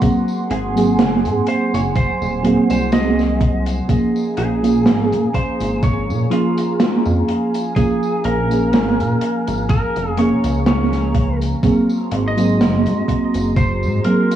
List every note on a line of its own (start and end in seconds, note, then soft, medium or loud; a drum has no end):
0.00 0.75 F#3 medium
0.00 0.76 A#3 medium
0.00 0.02 C4 medium
0.00 0.70 C4 medium
0.00 0.02 G#4 medium
0.00 11.59 G#4 medium
0.00 0.71 G#4 medium
0.00 3.85 F#5 medium
0.00 3.85 G#5 medium
0.00 3.85 C6 medium
0.00 kick loud
0.00 closed hi-hat medium
0.00 tambourine soft
0.28 tambourine soft
0.51 1.00 G#1 loud
0.51 1.50 G#4 medium
0.51 closed hi-hat medium
0.75 2.38 F#3 medium
0.75 2.38 A#3 medium
0.75 2.39 C4 medium
0.75 2.39 G#4 medium
0.75 closed hi-hat medium
0.75 tambourine medium
0.99 1.26 F#1 medium
0.99 snare loud
0.99 closed hi-hat medium
0.99 tambourine soft
1.25 1.42 G#2 medium
1.25 closed hi-hat medium
1.25 tambourine soft
1.47 1.72 C5 medium
1.47 closed hi-hat medium
1.74 2.10 F#1 medium
1.74 1.80 C#5 medium
1.74 closed hi-hat medium
1.74 tambourine medium
1.96 2.70 C5 medium
1.96 kick loud
1.96 closed hi-hat medium
1.96 tambourine soft
2.22 2.58 D#1 medium
2.22 tambourine soft
2.42 3.83 F#3 medium
2.42 3.84 A#3 medium
2.42 3.84 C4 medium
2.42 3.85 G#4 loud
2.42 closed hi-hat medium
2.70 3.81 C2 medium
2.70 2.91 C5 medium
2.70 closed hi-hat medium
2.70 tambourine medium
2.92 3.63 D#5 loud
2.92 snare loud
2.92 closed hi-hat medium
2.92 tambourine soft
3.19 snare soft
3.19 tambourine soft
3.41 kick loud
3.41 closed hi-hat medium
3.66 closed hi-hat medium
3.66 tambourine medium
3.88 4.57 F3 medium
3.88 4.57 A#3 medium
3.88 4.58 C#4 medium
3.88 4.58 G#4 medium
3.88 11.60 F5 medium
3.88 11.60 G#5 loud
3.88 14.36 A#5 medium
3.88 kick loud
3.88 closed hi-hat medium
3.88 tambourine soft
4.16 tambourine soft
4.37 4.88 A#1 loud
4.37 5.38 G#4 medium
4.37 closed hi-hat medium
4.62 6.25 F3 medium
4.62 6.25 A#3 medium
4.62 6.26 C#4 medium
4.62 6.26 G#4 medium
4.62 closed hi-hat medium
4.62 tambourine soft
4.86 5.14 G#1 loud
4.86 snare loud
4.86 closed hi-hat medium
4.86 tambourine soft
5.12 5.30 A#2 medium
5.12 closed hi-hat medium
5.12 tambourine soft
5.34 5.80 C5 loud
5.34 kick medium
5.34 closed hi-hat medium
5.60 6.10 G#1 medium
5.60 closed hi-hat medium
5.60 tambourine medium
5.83 6.33 C#5 loud
5.83 kick loud
5.83 closed hi-hat medium
5.83 tambourine soft
6.09 6.26 A#2 medium
6.09 tambourine soft
6.30 7.70 F3 medium
6.30 7.71 A#3 medium
6.30 7.71 C#4 medium
6.30 7.24 F4 medium
6.30 7.72 G#4 medium
6.30 closed hi-hat medium
6.58 closed hi-hat medium
6.58 tambourine medium
6.80 snare loud
6.80 closed hi-hat medium
6.80 tambourine soft
7.05 7.23 F2 medium
7.05 tambourine soft
7.28 closed hi-hat medium
7.54 closed hi-hat medium
7.54 tambourine medium
7.76 8.44 F3 medium
7.76 8.44 A#3 medium
7.76 8.45 C#4 medium
7.76 8.21 G#4 medium
7.76 8.45 G#4 medium
7.76 kick loud
7.76 closed hi-hat medium
7.76 tambourine soft
8.03 tambourine soft
8.24 8.75 A#1 loud
8.24 9.66 A#4 loud
8.24 closed hi-hat medium
8.50 10.12 F3 medium
8.50 10.13 A#3 medium
8.50 10.13 C#4 medium
8.50 10.14 G#4 medium
8.50 closed hi-hat medium
8.50 tambourine medium
8.73 9.01 G#1 loud
8.73 snare loud
8.73 closed hi-hat medium
8.73 tambourine soft
8.99 9.16 A#2 medium
8.99 closed hi-hat medium
8.99 tambourine soft
9.21 closed hi-hat medium
9.47 9.84 G#1 medium
9.47 closed hi-hat medium
9.47 tambourine soft
9.69 10.20 A#4 loud
9.69 kick loud
9.69 closed hi-hat medium
9.69 tambourine soft
9.96 10.33 F1 medium
9.96 closed hi-hat medium
9.96 tambourine soft
10.17 11.57 F3 medium
10.17 11.58 A#3 medium
10.17 11.58 C#4 medium
10.17 11.59 G#4 medium
10.17 10.66 C#5 loud
10.17 closed hi-hat medium
10.44 11.55 C#2 medium
10.44 closed hi-hat medium
10.44 tambourine medium
10.66 11.38 C#5 loud
10.66 snare loud
10.66 closed hi-hat medium
10.66 tambourine soft
10.92 snare soft
10.92 closed hi-hat soft
10.92 tambourine soft
11.15 kick loud
11.15 closed hi-hat medium
11.42 closed hi-hat medium
11.42 tambourine soft
11.62 12.31 F#3 medium
11.62 12.31 A#3 medium
11.62 12.32 C4 medium
11.62 14.36 F#4 medium
11.62 14.36 G#4 medium
11.62 12.32 G#4 medium
11.62 14.36 C6 medium
11.62 kick loud
11.62 closed hi-hat medium
11.62 tambourine soft
11.89 tambourine soft
12.11 12.62 G#1 loud
12.11 closed hi-hat medium
12.28 13.56 D#5 loud
12.36 13.99 F#3 medium
12.36 13.99 A#3 medium
12.36 14.00 C4 medium
12.36 14.01 G#4 medium
12.36 closed hi-hat medium
12.36 tambourine medium
12.60 12.88 F#1 loud
12.60 snare loud
12.60 closed hi-hat medium
12.60 tambourine soft
12.86 13.04 G#2 medium
12.86 closed hi-hat medium
12.86 tambourine soft
13.08 kick medium
13.08 closed hi-hat medium
13.34 13.85 F#1 medium
13.34 closed hi-hat medium
13.34 tambourine medium
13.56 14.07 C5 loud
13.56 kick loud
13.56 closed hi-hat medium
13.56 tambourine soft
13.83 14.00 G#2 medium
13.83 tambourine soft
14.04 14.36 F#3 medium
14.04 14.36 A#3 medium
14.04 14.36 C4 medium
14.04 14.36 G#4 medium
14.04 14.36 A#4 medium
14.04 closed hi-hat medium
14.31 closed hi-hat medium
14.31 tambourine medium